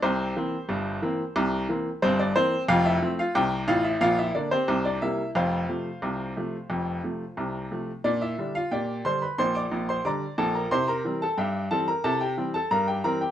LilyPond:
<<
  \new Staff \with { instrumentName = "Upright piano" } { \time 2/4 \key f \major \tempo 4 = 90 <c' g' c''>2~ | <c' g' c''>8 r8 <c' c''>16 <d' d''>16 <c' c''>8 | <f' f''>16 <e' e''>8 <f' f''>16 <g' g''>8 <f' f''>16 <e' e''>16 | <f' f''>16 <e' e''>16 <d' d''>16 <c' g' c''>8 <d' d''>16 <e' e''>8 |
<f' c'' f''>2~ | <f' c'' f''>4. r8 | <d' d''>16 <e' e''>8 <f' f''>16 <g' d'' g''>8 <c'' c'''>16 <b' b''>16 | <c'' c'''>16 <d'' d'''>8 <c'' c'''>16 <d'' bes'' d'''>8 <a' a''>16 <bes' bes''>16 |
<c'' c'''>16 <bes' bes''>8 <a' a''>16 <g' e'' g''>8 <a' a''>16 <bes' bes''>16 | <a' a''>16 <g' g''>8 <a' a''>16 <bes' bes''>16 <g' g''>16 <bes' bes''>16 <g' g''>16 | }
  \new Staff \with { instrumentName = "Upright piano" } { \clef bass \time 2/4 \key f \major <c, c>8 <e bes c'>8 <g,, g,>8 <e bes c'>8 | <c, c>8 <e bes c'>8 <g,, g,>8 <e bes>8 | <f,, f,>8 <f a c'>8 <c, c>8 <a,, a,>8 | <bes,, bes,>8 <d bes>8 <c, c>8 <c g bes>8 |
<f,, f,>8 <c f a>8 <c, c>8 <c f a>8 | <f,, f,>8 <c f a>8 <c, c>8 <c f a>8 | bes,8 <d g d'>8 bes,8 <d g d'>8 | <bes,, bes,>8 <bes,, bes,>8 <d g d'>8 <bes,, bes,>8 |
<c e'>8 <e g c'>8 g,8 <e g c'>8 | <c e'>8 <e g c'>8 g,8 <e g c'>8 | }
>>